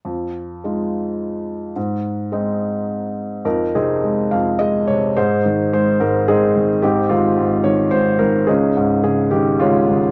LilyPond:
<<
  \new Staff \with { instrumentName = "Felt piano" } { \time 3/4 \key f \minor \tempo 4 = 107 << { r2. | r2. | bes'8 aes'4 f''8 ees''8 des''8 | c''4 c''8 bes'8 aes'8. r16 |
g'8 f'4 des''8 c''8 bes'8 | aes'4 aes'8 g'8 f'8. r16 | } \\ { r2. | r2. | ees'8 <c' ees'>4. r4 | <ees' aes'>4. r8 <c' ees'>4 |
<c' ees'>8 <aes c'>4. r4 | <des' ees'>4. r8 <aes des'>4 | } >> }
  \new Staff \with { instrumentName = "Felt piano" } { \clef bass \time 3/4 \key f \minor f,4 <aes ees' f'>2 | aes,4 <aes c' ees'>2 | f,8 c8 aes8 f,8 aes8 c8 | aes,8 ees8 aes8 aes,8 aes8 ees8 |
aes,8 ees8 aes,8 ees8 aes,8 ees8 | des,8 aes,8 des8 ees8 des8 ees8 | }
>>